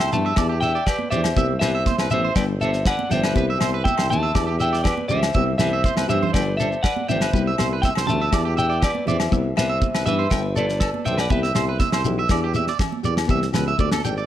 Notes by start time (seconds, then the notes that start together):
Already playing: E5 G5
0.00 C2 C5, snare, low agogo
0.12 G2 B3 E4 G4 E5 A5, low conga, shekere
0.26 E5
0.36 E2 B3 D4 G4 D5, kick, snare, low agogo, shekere
0.49 G4
0.61 D4 G4 E5 G5, shekere
0.75 D5, shekere
0.86 G4 B4 D5, kick, snare, low agogo, shekere
0.99 high conga
1.10 E2 G4 C5 D5 E5, low conga, shekere
1.15 D4
1.24 snare, low agogo, shekere
1.35 C2 G3 B3 E4 G4 E5, kick, high conga, shekere
1.59 C2 B3 E4 G4 B4 C5 E5, snare, low agogo, shekere
1.75 E5
1.86 C5, kick, snare, high conga, shekere
1.98 C2 B4, snare, low agogo
2.10 A1 B3 E4 G4 C5 E5, low conga, shekere
2.24 C5
2.35 G1 G3 B3 D4 A4 B4 D5 G5, kick, snare, low agogo, shekere
2.60 B3 D4 A4 E5, shekere
2.64 C5
2.73 snare, shekere
2.85 B4 D5 F#5, kick, snare, low agogo, shekere
2.99 high conga
3.09 G1 B3 D4 A4 E5 G5, snare, low conga, shekere
3.14 C5
3.23 B4, snare, low agogo
3.32 C2 G3 B3 E4 G4, kick, high conga
3.37 B4, shekere
3.50 E5
3.58 C2 B3 E4 G4 C5, snare, low agogo, shekere
3.74 B4
3.84 E5 G5, kick, high conga, shekere
3.98 C2 C5, snare, low agogo
4.09 D#2 B3 E4 G4 E5 A5, low conga, shekere
4.23 E5
4.34 E2 B3 D4 G4 D5, kick, snare, low agogo, shekere
4.47 G4
4.58 D4 G4 E5 G5, shekere
4.63 E5
4.73 D5, snare, shekere
4.84 G4 B4 D5, kick, snare, low conga, low agogo, shekere
4.98 high conga
5.08 C#2 D4 G4 C5 D5 E5, low conga, shekere
5.22 snare, low agogo, shekere
5.34 C2 G3 B3 E4 G4 E5, kick, high conga, shekere
5.58 C2 B3 E4 G4 B4 C5 E5, snare, low conga, low agogo, shekere
5.73 E5
5.84 C5, kick, high conga, shekere
5.96 C2 B4, snare, high conga, low agogo
6.08 G2 B3 E4 G4 C5 E5, low conga, shekere
6.22 C5, low conga
6.33 G1 G3 B3 D4 A4 B4 D5 G5, kick, snare, low agogo, shekere
6.57 B3 D4 A4 C5 E5, shekere
6.72 shekere
6.83 B4 D5 F#5, kick, snare, low agogo, shekere
6.96 high conga
7.08 G1 B3 D4 A4 C5 E5 G5, low conga, shekere
7.21 B4, snare, low agogo, shekere
7.33 C2 G3 B3 E4 G4 B4, kick, high conga, shekere
7.47 E5
7.58 C2 B3 E4 G4 C5, snare, low agogo, shekere
7.73 B4
7.82 E5 G5, kick, snare, high conga, shekere
7.95 C2 C5, snare, low agogo
8.07 D2 B3 E4 G4 E5 A5, low conga, shekere
8.22 E5
8.31 E2 B3 D4 G4 D5, kick, snare, low agogo, shekere
8.45 G4
8.55 D4 G4 E5, shekere
8.59 E5 G5
8.70 D5, shekere
8.82 G4 D5, kick, snare, low agogo, shekere
8.87 B4
8.95 high conga
9.05 E2 D4 G4 D5 E5, low conga, shekere
9.10 C5
9.20 snare, low agogo, shekere
9.30 C2 G3 B3 E4 G4, muted clean electric guitar stroke, kick, high conga, shekere
9.56 C2 B3 E4 B4 C5 E5, muted nylon-string guitar stroke, snare, low agogo, shekere
9.69 E5
9.82 kick, high conga, shekere
9.95 C2 B4, snare, low agogo
10.05 G2 B3 E4 G4 B4 E5, low conga, shekere
10.19 C5
10.31 G1 G3 B3 D4 A4 G5, kick, snare, low agogo, shekere
10.55 B3 D4 A4 B4 D5, shekere
10.69 snare, shekere
10.80 A4, kick, snare, low agogo, shekere
10.94 high conga
11.05 B1 B3 D4 A4 C5 E5 G5, low conga, shekere
11.17 B4 D5 F#5, snare, low agogo, shekere
11.29 C2 B3 G4 B4 E5 G5, muted nylon-string guitar stroke, kick, high conga, shekere
11.43 E5, snare
11.55 C2 B3 E4 G4 C5, snare, low agogo, shekere
11.69 B4
11.80 E5, kick, snare, high conga, shekere
11.92 C2 C5, snare, low agogo
12.05 B1 B3 E4 G4, low conga, shekere
12.19 E5
12.29 E2 B3 D4 G4 D5, kick, snare, low agogo, shekere
12.44 G4
12.53 D4 G4 E5, high conga, shekere
12.67 D5, snare
12.79 muted clean electric guitar stroke, kick, snare, low conga, low agogo, shekere
12.92 high conga
13.03 E2 G4 D5, low conga, shekere
13.17 snare, low agogo
13.27 C2 E3 B3 E4 G4 E5, kick, high conga, shekere
13.42 snare
13.53 C#2 B3 G4 B4, snare, low conga, low agogo, shekere
13.68 E5, shekere
13.78 D2 A3 D4 G4 D5, kick, high conga, shekere
13.91 D2 A4, snare, high conga, low agogo
14.04 G#1 D4 G4 G5, low conga, shekere
14.17 D5, shekere